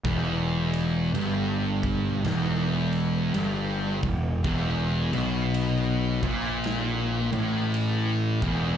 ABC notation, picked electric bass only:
X:1
M:4/4
L:1/8
Q:"Swing" 1/4=55
K:C
V:1 name="Picked electric bass" clef=bass
E,,,2 G,,,2 E,,,2 G,,, E,,, | E,,, B,,,2 ^A,,,2 =A,,,2 E,,, |]